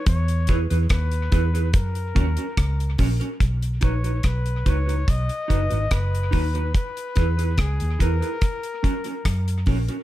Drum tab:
HH |xxxxxxxxxxxxxxox|xxxxxxxxxxxxxxox|xxxxxxxxxxxxxxox|
SD |----r-------r---|----r-------r---|----r---r---r---|
BD |o-o-o-o-o-o-o-o-|o-o-o-o-o-o-o-o-|o-o-o-o-o-o-o-o-|